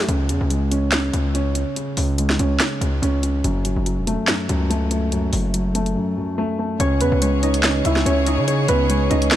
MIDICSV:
0, 0, Header, 1, 6, 480
1, 0, Start_track
1, 0, Key_signature, 4, "minor"
1, 0, Tempo, 419580
1, 98, Time_signature, 4, 2, 24, 8
1, 10711, End_track
2, 0, Start_track
2, 0, Title_t, "Harp"
2, 0, Program_c, 0, 46
2, 7776, Note_on_c, 0, 73, 90
2, 7786, Note_on_c, 0, 61, 72
2, 8019, Note_on_c, 0, 71, 79
2, 8027, Note_on_c, 0, 59, 69
2, 8255, Note_off_c, 0, 73, 0
2, 8259, Note_on_c, 0, 73, 84
2, 8264, Note_off_c, 0, 61, 0
2, 8268, Note_on_c, 0, 61, 71
2, 8496, Note_on_c, 0, 75, 80
2, 8505, Note_on_c, 0, 63, 59
2, 8983, Note_on_c, 0, 76, 81
2, 8993, Note_on_c, 0, 64, 62
2, 9052, Note_off_c, 0, 63, 0
2, 9052, Note_off_c, 0, 75, 0
2, 9214, Note_off_c, 0, 73, 0
2, 9218, Note_on_c, 0, 73, 80
2, 9224, Note_off_c, 0, 61, 0
2, 9228, Note_on_c, 0, 61, 67
2, 9458, Note_on_c, 0, 75, 81
2, 9468, Note_on_c, 0, 63, 69
2, 9527, Note_off_c, 0, 64, 0
2, 9527, Note_off_c, 0, 76, 0
2, 9690, Note_off_c, 0, 73, 0
2, 9695, Note_on_c, 0, 73, 87
2, 9700, Note_off_c, 0, 61, 0
2, 9705, Note_on_c, 0, 61, 71
2, 9931, Note_off_c, 0, 71, 0
2, 9935, Note_on_c, 0, 71, 88
2, 9941, Note_off_c, 0, 59, 0
2, 9945, Note_on_c, 0, 59, 67
2, 10170, Note_off_c, 0, 73, 0
2, 10174, Note_on_c, 0, 73, 76
2, 10178, Note_off_c, 0, 61, 0
2, 10183, Note_on_c, 0, 61, 69
2, 10407, Note_off_c, 0, 75, 0
2, 10412, Note_on_c, 0, 75, 82
2, 10415, Note_off_c, 0, 63, 0
2, 10420, Note_on_c, 0, 63, 69
2, 10711, Note_off_c, 0, 59, 0
2, 10711, Note_off_c, 0, 61, 0
2, 10711, Note_off_c, 0, 63, 0
2, 10711, Note_off_c, 0, 71, 0
2, 10711, Note_off_c, 0, 73, 0
2, 10711, Note_off_c, 0, 75, 0
2, 10711, End_track
3, 0, Start_track
3, 0, Title_t, "String section"
3, 0, Program_c, 1, 48
3, 7778, Note_on_c, 1, 49, 76
3, 7778, Note_on_c, 1, 68, 73
3, 7779, Note_on_c, 1, 61, 71
3, 7779, Note_on_c, 1, 73, 86
3, 10711, Note_off_c, 1, 49, 0
3, 10711, Note_off_c, 1, 61, 0
3, 10711, Note_off_c, 1, 68, 0
3, 10711, Note_off_c, 1, 73, 0
3, 10711, End_track
4, 0, Start_track
4, 0, Title_t, "Grand piano"
4, 0, Program_c, 2, 0
4, 0, Control_c, 2, 64, 127
4, 0, Note_on_c, 2, 42, 72
4, 0, Note_on_c, 2, 54, 69
4, 0, Note_on_c, 2, 57, 79
4, 97, Note_on_c, 2, 49, 91
4, 112, Control_c, 2, 64, 0
4, 120, Note_off_c, 2, 54, 0
4, 120, Note_off_c, 2, 57, 0
4, 121, Note_off_c, 2, 42, 0
4, 310, Control_c, 2, 64, 127
4, 319, Note_off_c, 2, 49, 0
4, 336, Note_on_c, 2, 49, 79
4, 577, Note_on_c, 2, 56, 77
4, 817, Note_on_c, 2, 61, 95
4, 1042, Note_off_c, 2, 49, 0
4, 1059, Note_on_c, 2, 49, 74
4, 1282, Note_off_c, 2, 49, 0
4, 1299, Note_on_c, 2, 49, 80
4, 1522, Note_off_c, 2, 61, 0
4, 1539, Note_on_c, 2, 61, 103
4, 1761, Note_off_c, 2, 61, 0
4, 1777, Note_off_c, 2, 56, 0
4, 1778, Note_on_c, 2, 61, 74
4, 2001, Note_off_c, 2, 49, 0
4, 2018, Note_on_c, 2, 49, 88
4, 2240, Note_off_c, 2, 49, 0
4, 2258, Note_on_c, 2, 49, 76
4, 2499, Note_on_c, 2, 56, 80
4, 2722, Note_off_c, 2, 61, 0
4, 2739, Note_on_c, 2, 61, 101
4, 2962, Note_off_c, 2, 49, 0
4, 2979, Note_on_c, 2, 49, 78
4, 3203, Note_off_c, 2, 49, 0
4, 3220, Note_on_c, 2, 49, 72
4, 3441, Note_off_c, 2, 61, 0
4, 3458, Note_on_c, 2, 61, 106
4, 3681, Note_off_c, 2, 61, 0
4, 3698, Note_on_c, 2, 61, 74
4, 3699, Note_off_c, 2, 56, 0
4, 3937, Note_on_c, 2, 42, 87
4, 3938, Note_off_c, 2, 61, 0
4, 3939, Note_off_c, 2, 49, 0
4, 3952, Control_c, 2, 64, 0
4, 4130, Control_c, 2, 64, 127
4, 4161, Note_off_c, 2, 42, 0
4, 4178, Note_on_c, 2, 42, 78
4, 4419, Note_on_c, 2, 54, 71
4, 4657, Note_on_c, 2, 57, 92
4, 4880, Note_off_c, 2, 42, 0
4, 4897, Note_on_c, 2, 42, 74
4, 5120, Note_off_c, 2, 42, 0
4, 5137, Note_on_c, 2, 42, 77
4, 5361, Note_off_c, 2, 57, 0
4, 5378, Note_on_c, 2, 57, 103
4, 5600, Note_off_c, 2, 57, 0
4, 5617, Note_on_c, 2, 57, 81
4, 5618, Note_off_c, 2, 54, 0
4, 5839, Note_off_c, 2, 42, 0
4, 5856, Note_on_c, 2, 42, 93
4, 6080, Note_off_c, 2, 42, 0
4, 6098, Note_on_c, 2, 42, 77
4, 6336, Note_on_c, 2, 54, 70
4, 6559, Note_off_c, 2, 57, 0
4, 6576, Note_on_c, 2, 57, 89
4, 6797, Note_off_c, 2, 42, 0
4, 6814, Note_on_c, 2, 42, 70
4, 7041, Note_off_c, 2, 42, 0
4, 7058, Note_on_c, 2, 42, 77
4, 7281, Note_off_c, 2, 57, 0
4, 7298, Note_on_c, 2, 57, 107
4, 7521, Note_off_c, 2, 57, 0
4, 7537, Note_off_c, 2, 54, 0
4, 7538, Note_on_c, 2, 57, 81
4, 7778, Note_off_c, 2, 42, 0
4, 7778, Note_off_c, 2, 57, 0
4, 7778, Note_on_c, 2, 49, 92
4, 7791, Control_c, 2, 64, 0
4, 7996, Control_c, 2, 64, 127
4, 8000, Note_off_c, 2, 49, 0
4, 8017, Note_on_c, 2, 49, 82
4, 8258, Note_on_c, 2, 56, 83
4, 8497, Note_on_c, 2, 61, 96
4, 8721, Note_off_c, 2, 49, 0
4, 8738, Note_on_c, 2, 49, 77
4, 8962, Note_off_c, 2, 49, 0
4, 8979, Note_on_c, 2, 49, 82
4, 9201, Note_off_c, 2, 61, 0
4, 9218, Note_on_c, 2, 61, 110
4, 9441, Note_off_c, 2, 61, 0
4, 9458, Note_off_c, 2, 56, 0
4, 9458, Note_on_c, 2, 61, 75
4, 9680, Note_off_c, 2, 49, 0
4, 9697, Note_on_c, 2, 49, 88
4, 9919, Note_off_c, 2, 49, 0
4, 9936, Note_on_c, 2, 49, 80
4, 10177, Note_on_c, 2, 56, 78
4, 10399, Note_off_c, 2, 61, 0
4, 10416, Note_on_c, 2, 61, 103
4, 10640, Note_off_c, 2, 49, 0
4, 10658, Note_on_c, 2, 49, 81
4, 10711, Note_off_c, 2, 49, 0
4, 10711, Note_off_c, 2, 56, 0
4, 10711, Note_off_c, 2, 61, 0
4, 10711, End_track
5, 0, Start_track
5, 0, Title_t, "808-style bass"
5, 0, Program_c, 3, 38
5, 98, Note_on_c, 3, 37, 107
5, 339, Note_on_c, 3, 40, 101
5, 356, Note_off_c, 3, 37, 0
5, 459, Note_off_c, 3, 40, 0
5, 467, Note_on_c, 3, 37, 98
5, 1265, Note_off_c, 3, 37, 0
5, 1297, Note_on_c, 3, 37, 107
5, 1880, Note_off_c, 3, 37, 0
5, 2257, Note_on_c, 3, 37, 101
5, 2718, Note_off_c, 3, 37, 0
5, 2739, Note_on_c, 3, 37, 103
5, 2969, Note_off_c, 3, 37, 0
5, 3216, Note_on_c, 3, 37, 108
5, 3448, Note_off_c, 3, 37, 0
5, 3458, Note_on_c, 3, 37, 101
5, 3919, Note_off_c, 3, 37, 0
5, 3938, Note_on_c, 3, 30, 110
5, 4290, Note_off_c, 3, 30, 0
5, 4305, Note_on_c, 3, 30, 105
5, 4545, Note_on_c, 3, 28, 98
5, 4563, Note_off_c, 3, 30, 0
5, 4773, Note_off_c, 3, 28, 0
5, 5139, Note_on_c, 3, 37, 102
5, 6060, Note_off_c, 3, 37, 0
5, 6097, Note_on_c, 3, 30, 105
5, 6818, Note_off_c, 3, 30, 0
5, 7777, Note_on_c, 3, 37, 107
5, 8017, Note_on_c, 3, 40, 100
5, 8034, Note_off_c, 3, 37, 0
5, 8138, Note_off_c, 3, 40, 0
5, 8144, Note_on_c, 3, 37, 100
5, 8944, Note_off_c, 3, 37, 0
5, 8978, Note_on_c, 3, 37, 104
5, 9208, Note_off_c, 3, 37, 0
5, 9217, Note_on_c, 3, 37, 106
5, 9584, Note_on_c, 3, 49, 102
5, 9601, Note_off_c, 3, 37, 0
5, 9920, Note_off_c, 3, 49, 0
5, 9938, Note_on_c, 3, 37, 108
5, 10399, Note_off_c, 3, 37, 0
5, 10418, Note_on_c, 3, 37, 105
5, 10648, Note_off_c, 3, 37, 0
5, 10711, End_track
6, 0, Start_track
6, 0, Title_t, "Drums"
6, 98, Note_on_c, 9, 42, 75
6, 212, Note_off_c, 9, 42, 0
6, 334, Note_on_c, 9, 42, 79
6, 448, Note_off_c, 9, 42, 0
6, 577, Note_on_c, 9, 42, 88
6, 691, Note_off_c, 9, 42, 0
6, 818, Note_on_c, 9, 42, 75
6, 932, Note_off_c, 9, 42, 0
6, 1049, Note_on_c, 9, 39, 93
6, 1057, Note_on_c, 9, 38, 113
6, 1057, Note_on_c, 9, 42, 78
6, 1164, Note_off_c, 9, 39, 0
6, 1171, Note_off_c, 9, 38, 0
6, 1171, Note_off_c, 9, 42, 0
6, 1299, Note_on_c, 9, 42, 72
6, 1413, Note_off_c, 9, 42, 0
6, 1543, Note_on_c, 9, 42, 79
6, 1657, Note_off_c, 9, 42, 0
6, 1775, Note_on_c, 9, 42, 79
6, 1889, Note_off_c, 9, 42, 0
6, 2018, Note_on_c, 9, 42, 77
6, 2132, Note_off_c, 9, 42, 0
6, 2254, Note_on_c, 9, 46, 80
6, 2368, Note_off_c, 9, 46, 0
6, 2498, Note_on_c, 9, 42, 89
6, 2612, Note_off_c, 9, 42, 0
6, 2626, Note_on_c, 9, 38, 78
6, 2738, Note_on_c, 9, 42, 75
6, 2740, Note_off_c, 9, 38, 0
6, 2853, Note_off_c, 9, 42, 0
6, 2970, Note_on_c, 9, 39, 90
6, 2977, Note_on_c, 9, 38, 113
6, 2978, Note_on_c, 9, 42, 81
6, 3085, Note_off_c, 9, 39, 0
6, 3092, Note_off_c, 9, 38, 0
6, 3092, Note_off_c, 9, 42, 0
6, 3221, Note_on_c, 9, 42, 70
6, 3335, Note_off_c, 9, 42, 0
6, 3464, Note_on_c, 9, 42, 75
6, 3578, Note_off_c, 9, 42, 0
6, 3696, Note_on_c, 9, 42, 80
6, 3810, Note_off_c, 9, 42, 0
6, 3939, Note_on_c, 9, 42, 73
6, 4054, Note_off_c, 9, 42, 0
6, 4174, Note_on_c, 9, 42, 75
6, 4289, Note_off_c, 9, 42, 0
6, 4418, Note_on_c, 9, 42, 90
6, 4533, Note_off_c, 9, 42, 0
6, 4659, Note_on_c, 9, 42, 74
6, 4773, Note_off_c, 9, 42, 0
6, 4890, Note_on_c, 9, 39, 89
6, 4897, Note_on_c, 9, 38, 117
6, 4897, Note_on_c, 9, 42, 79
6, 5004, Note_off_c, 9, 39, 0
6, 5011, Note_off_c, 9, 38, 0
6, 5012, Note_off_c, 9, 42, 0
6, 5139, Note_on_c, 9, 42, 68
6, 5254, Note_off_c, 9, 42, 0
6, 5383, Note_on_c, 9, 42, 78
6, 5498, Note_off_c, 9, 42, 0
6, 5616, Note_on_c, 9, 42, 79
6, 5730, Note_off_c, 9, 42, 0
6, 5858, Note_on_c, 9, 42, 74
6, 5972, Note_off_c, 9, 42, 0
6, 6094, Note_on_c, 9, 46, 78
6, 6208, Note_off_c, 9, 46, 0
6, 6337, Note_on_c, 9, 42, 88
6, 6451, Note_off_c, 9, 42, 0
6, 6578, Note_on_c, 9, 42, 74
6, 6692, Note_off_c, 9, 42, 0
6, 6705, Note_on_c, 9, 42, 47
6, 6820, Note_off_c, 9, 42, 0
6, 7778, Note_on_c, 9, 42, 76
6, 7893, Note_off_c, 9, 42, 0
6, 8014, Note_on_c, 9, 42, 78
6, 8129, Note_off_c, 9, 42, 0
6, 8257, Note_on_c, 9, 42, 93
6, 8372, Note_off_c, 9, 42, 0
6, 8499, Note_on_c, 9, 42, 62
6, 8613, Note_off_c, 9, 42, 0
6, 8625, Note_on_c, 9, 42, 69
6, 8730, Note_on_c, 9, 39, 93
6, 8737, Note_off_c, 9, 42, 0
6, 8737, Note_on_c, 9, 38, 117
6, 8737, Note_on_c, 9, 42, 80
6, 8844, Note_off_c, 9, 39, 0
6, 8851, Note_off_c, 9, 38, 0
6, 8852, Note_off_c, 9, 42, 0
6, 8980, Note_on_c, 9, 42, 74
6, 9094, Note_off_c, 9, 42, 0
6, 9106, Note_on_c, 9, 38, 67
6, 9220, Note_off_c, 9, 38, 0
6, 9224, Note_on_c, 9, 42, 79
6, 9338, Note_off_c, 9, 42, 0
6, 9455, Note_on_c, 9, 42, 82
6, 9569, Note_off_c, 9, 42, 0
6, 9699, Note_on_c, 9, 42, 79
6, 9813, Note_off_c, 9, 42, 0
6, 9935, Note_on_c, 9, 42, 81
6, 10049, Note_off_c, 9, 42, 0
6, 10178, Note_on_c, 9, 42, 90
6, 10292, Note_off_c, 9, 42, 0
6, 10418, Note_on_c, 9, 42, 65
6, 10533, Note_off_c, 9, 42, 0
6, 10546, Note_on_c, 9, 42, 67
6, 10650, Note_on_c, 9, 39, 96
6, 10657, Note_off_c, 9, 42, 0
6, 10657, Note_on_c, 9, 38, 115
6, 10657, Note_on_c, 9, 42, 79
6, 10711, Note_off_c, 9, 38, 0
6, 10711, Note_off_c, 9, 39, 0
6, 10711, Note_off_c, 9, 42, 0
6, 10711, End_track
0, 0, End_of_file